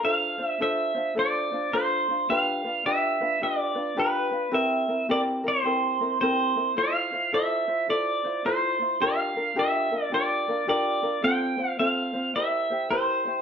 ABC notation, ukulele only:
X:1
M:4/4
L:1/8
Q:"Swing" 1/4=107
K:F
V:1 name="Ukulele"
[DFAc] [DFc] [DFAc] [DFc] [DFAc] [DFc] [DFAc] [DFc] | [DFG=B] [DFB] [DFGB] [DFB] [DFGB] [DFB] [DFGB] [DFB] | [CEGB] [CEB] [CEGB] [CEB] [CEGB] [CEB] [CEGB] [CEB] | [EFAc] [EFc] [EFAc] [EFc] [EFAc] [EFc] [EFAc] [EFc] |
[DFGB] [DFB] [DFGB] [DFB] [DFGB] [DFB] [DFGB] [DFB] | [CFAc] [CFc] [CFAc] [CFc] [EGBc] [EGc] [EGBc] [EGc] |]